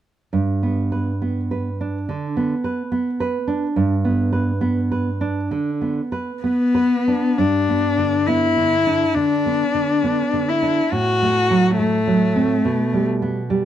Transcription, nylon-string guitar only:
0.33 2.05 G2 soft
0.63 1.11 B3 soft
0.92 1.40 B4 soft
1.22 1.69 B3 soft
1.51 1.97 B4 soft
1.81 2.26 D4 soft
2.09 2.54 D3 soft
2.37 2.82 B3 soft
2.64 3.09 B4 soft
2.92 3.37 B3 soft
3.20 3.66 B4 soft
3.47 3.94 D4 soft
3.76 5.47 G2 soft
4.05 4.51 B3 soft
4.33 4.80 B4 soft
4.61 5.09 B3 soft
4.91 5.39 B4 soft
5.21 5.69 D4 soft
5.51 6.00 D3 soft
5.81 6.31 B3 soft
6.12 6.62 B4 soft
6.44 6.95 B3 soft
6.75 7.26 B4 soft
7.08 7.39 D4 soft
7.38 9.12 G2 soft
7.69 8.16 B3 soft
7.98 8.45 D3 soft
8.28 8.75 B3 soft
8.57 9.04 D3 soft
8.87 9.33 D4 soft
9.16 9.63 D3 soft
9.46 9.93 B3 soft
9.74 10.22 D3 soft
10.04 10.51 B3 soft
10.33 10.81 D3 soft
10.62 10.92 D4 soft
10.92 12.61 A2 soft
11.22 11.68 A3 soft
11.51 11.96 F#3 soft
11.79 12.25 A3 soft
12.07 12.53 F#3 soft
12.36 12.65 C4 soft
12.65 13.65 B2 soft
12.93 13.39 G3 soft
13.22 13.65 B3 soft
13.50 13.65 G3 soft

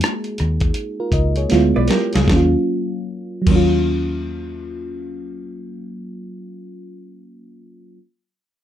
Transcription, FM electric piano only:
0.00 1.49 G#3 medium
0.00 1.51 A#3 medium
0.00 1.52 D#4 medium
0.00 1.52 F#4 medium
0.00 1.37 G#4 medium
1.00 1.12 F4 soft
1.00 1.12 A#4 medium
1.13 1.36 A#4 soft
1.13 1.35 D#5 medium
1.37 1.73 G#4 soft
1.37 1.73 C#5 medium
1.49 2.17 G#3 medium
1.49 2.18 B3 medium
1.49 2.18 E4 medium
1.49 2.19 F4 medium
2.22 2.51 F#3 medium
2.27 2.53 A#3 medium
2.32 2.56 C#4 medium
2.36 2.58 F4 medium
3.42 6.88 F#3 medium
3.47 6.91 A#3 medium
3.51 6.93 C#4 medium
3.51 6.95 F4 medium

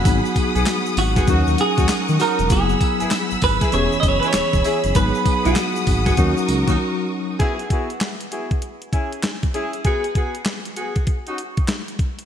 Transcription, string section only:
0.00 1.25 G#4 medium
0.00 1.24 B5 medium
0.05 3.69 F#5 medium
0.05 1.27 D#6 medium
1.28 2.49 A#4 medium
1.28 2.49 C#6 medium
1.28 2.49 D#6 medium
2.50 6.14 G#4 medium
2.50 6.14 B5 medium
2.50 4.93 E6 medium
3.73 4.94 C#5 medium
4.95 7.38 F#5 medium
4.95 7.38 D#6 medium
6.18 7.39 A#4 medium
6.18 7.39 C#6 medium

